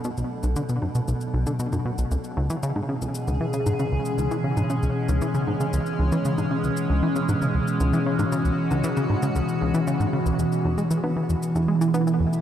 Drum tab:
SH |xx-xxx-xxx-xxx-x|xx-xx--xxx-xxx-x|xx-xxx-xxx-xxx-x|xx-xx--xxx-xxx-x|
CG |---o--o---o--o--|--o--o---o--o---|o--o---o--o---o-|-o---o--o---o--o|

SH |xx-xxx-xxx-xxx-x|xx-xx--xxx-xxx-x|
CG |---o--o---o--o--|--o--o---o--o---|